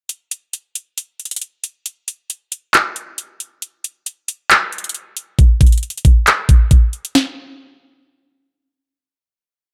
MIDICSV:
0, 0, Header, 1, 2, 480
1, 0, Start_track
1, 0, Tempo, 441176
1, 100, Time_signature, 4, 2, 24, 8
1, 10586, End_track
2, 0, Start_track
2, 0, Title_t, "Drums"
2, 100, Note_on_c, 9, 42, 71
2, 209, Note_off_c, 9, 42, 0
2, 341, Note_on_c, 9, 42, 72
2, 450, Note_off_c, 9, 42, 0
2, 581, Note_on_c, 9, 42, 73
2, 689, Note_off_c, 9, 42, 0
2, 820, Note_on_c, 9, 42, 80
2, 929, Note_off_c, 9, 42, 0
2, 1062, Note_on_c, 9, 42, 78
2, 1171, Note_off_c, 9, 42, 0
2, 1301, Note_on_c, 9, 42, 39
2, 1364, Note_off_c, 9, 42, 0
2, 1364, Note_on_c, 9, 42, 48
2, 1428, Note_off_c, 9, 42, 0
2, 1428, Note_on_c, 9, 42, 63
2, 1484, Note_off_c, 9, 42, 0
2, 1484, Note_on_c, 9, 42, 70
2, 1540, Note_off_c, 9, 42, 0
2, 1540, Note_on_c, 9, 42, 67
2, 1648, Note_off_c, 9, 42, 0
2, 1780, Note_on_c, 9, 42, 66
2, 1889, Note_off_c, 9, 42, 0
2, 2020, Note_on_c, 9, 42, 72
2, 2129, Note_off_c, 9, 42, 0
2, 2261, Note_on_c, 9, 42, 65
2, 2370, Note_off_c, 9, 42, 0
2, 2500, Note_on_c, 9, 42, 70
2, 2609, Note_off_c, 9, 42, 0
2, 2740, Note_on_c, 9, 42, 79
2, 2849, Note_off_c, 9, 42, 0
2, 2980, Note_on_c, 9, 39, 117
2, 2982, Note_on_c, 9, 42, 76
2, 3089, Note_off_c, 9, 39, 0
2, 3091, Note_off_c, 9, 42, 0
2, 3220, Note_on_c, 9, 42, 71
2, 3329, Note_off_c, 9, 42, 0
2, 3460, Note_on_c, 9, 42, 72
2, 3569, Note_off_c, 9, 42, 0
2, 3700, Note_on_c, 9, 42, 67
2, 3809, Note_off_c, 9, 42, 0
2, 3940, Note_on_c, 9, 42, 73
2, 4049, Note_off_c, 9, 42, 0
2, 4181, Note_on_c, 9, 42, 71
2, 4290, Note_off_c, 9, 42, 0
2, 4420, Note_on_c, 9, 42, 74
2, 4529, Note_off_c, 9, 42, 0
2, 4660, Note_on_c, 9, 42, 80
2, 4769, Note_off_c, 9, 42, 0
2, 4900, Note_on_c, 9, 39, 116
2, 4902, Note_on_c, 9, 42, 79
2, 5009, Note_off_c, 9, 39, 0
2, 5011, Note_off_c, 9, 42, 0
2, 5141, Note_on_c, 9, 42, 42
2, 5204, Note_off_c, 9, 42, 0
2, 5204, Note_on_c, 9, 42, 49
2, 5268, Note_off_c, 9, 42, 0
2, 5268, Note_on_c, 9, 42, 62
2, 5324, Note_off_c, 9, 42, 0
2, 5324, Note_on_c, 9, 42, 72
2, 5380, Note_off_c, 9, 42, 0
2, 5380, Note_on_c, 9, 42, 63
2, 5489, Note_off_c, 9, 42, 0
2, 5620, Note_on_c, 9, 42, 67
2, 5729, Note_off_c, 9, 42, 0
2, 5860, Note_on_c, 9, 42, 74
2, 5861, Note_on_c, 9, 36, 108
2, 5969, Note_off_c, 9, 36, 0
2, 5969, Note_off_c, 9, 42, 0
2, 6100, Note_on_c, 9, 36, 102
2, 6101, Note_on_c, 9, 42, 55
2, 6164, Note_off_c, 9, 42, 0
2, 6164, Note_on_c, 9, 42, 57
2, 6209, Note_off_c, 9, 36, 0
2, 6228, Note_off_c, 9, 42, 0
2, 6228, Note_on_c, 9, 42, 53
2, 6284, Note_off_c, 9, 42, 0
2, 6284, Note_on_c, 9, 42, 56
2, 6341, Note_off_c, 9, 42, 0
2, 6341, Note_on_c, 9, 42, 59
2, 6421, Note_off_c, 9, 42, 0
2, 6421, Note_on_c, 9, 42, 60
2, 6501, Note_off_c, 9, 42, 0
2, 6501, Note_on_c, 9, 42, 57
2, 6580, Note_off_c, 9, 42, 0
2, 6580, Note_on_c, 9, 42, 82
2, 6581, Note_on_c, 9, 36, 96
2, 6689, Note_off_c, 9, 36, 0
2, 6689, Note_off_c, 9, 42, 0
2, 6821, Note_on_c, 9, 39, 116
2, 6822, Note_on_c, 9, 42, 81
2, 6929, Note_off_c, 9, 39, 0
2, 6931, Note_off_c, 9, 42, 0
2, 7060, Note_on_c, 9, 36, 89
2, 7060, Note_on_c, 9, 42, 72
2, 7169, Note_off_c, 9, 36, 0
2, 7169, Note_off_c, 9, 42, 0
2, 7299, Note_on_c, 9, 42, 71
2, 7301, Note_on_c, 9, 36, 89
2, 7408, Note_off_c, 9, 42, 0
2, 7409, Note_off_c, 9, 36, 0
2, 7541, Note_on_c, 9, 42, 42
2, 7649, Note_off_c, 9, 42, 0
2, 7667, Note_on_c, 9, 42, 72
2, 7776, Note_off_c, 9, 42, 0
2, 7780, Note_on_c, 9, 38, 96
2, 7889, Note_off_c, 9, 38, 0
2, 10586, End_track
0, 0, End_of_file